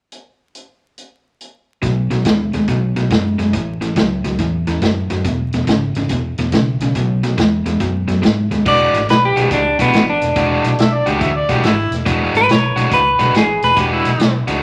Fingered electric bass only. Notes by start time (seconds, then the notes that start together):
1.83 B1
2.11 B1
2.25 D#2
2.54 D#2
2.68 B1
2.97 B1
3.11 F#2
3.39 F#2
3.53 A1
3.96 C#2
4.25 C#2
4.39 E2
4.68 E2
4.82 F#2
5.10 F#2
5.25 E1
5.54 E1
5.67 G#1
5.96 G#1
6.09 E1
6.38 E1
6.52 B1
6.80 B1
6.95 B1
7.38 E2
7.65 E2
7.80 F#2
8.08 F#2
8.23 G#2
8.51 D#2
8.66 E1
8.93 G#1
9.09 B1
9.36 B1
9.51 C#2
9.79 B1
9.94 A1
10.22 E1
10.36 E1
10.64 B1
10.78 B1
11.07 C#2
11.21 D2
11.49 B1
11.63 G#1
11.91 E1
12.06 E1
12.34 G#1
12.48 B1
12.76 B1
12.92 C#2
13.19 B1
13.34 A1
13.62 E1
13.77 E1
14.04 B1
14.19 B1
14.47 C#2